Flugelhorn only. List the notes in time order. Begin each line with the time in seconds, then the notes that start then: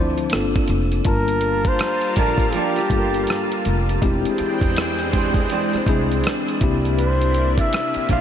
Already playing: D5
1.08 A#4
1.68 C5
2.18 A#4
2.55 G4
6.99 C5
7.60 E5
8.11 F5